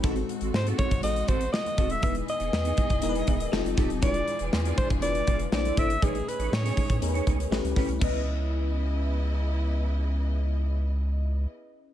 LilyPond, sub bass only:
\new Staff \with { instrumentName = "Sub bass" } { \clef bass \time 4/4 \key cis \minor \tempo 4 = 120 gis,,8 r16 gis,,16 gis,8 r16 gis,,16 a,,8 a,,8 r8 dis,,8 | e,,8 r16 e,,16 e,8 r16 e,,16 e,,8 dis,,8 f,,16 f,,16 d,,16 ees,,16 | e,,8 r16 e,,16 e,8 r16 e,,16 f,,8 f,,8 ais,,8 gis,,8 | a,,8 r16 a,,16 a,8 r16 a,16 e,8 cis,8 a,,16 cis,16 b,,16 bis,,16 |
cis,1~ | cis,1 | }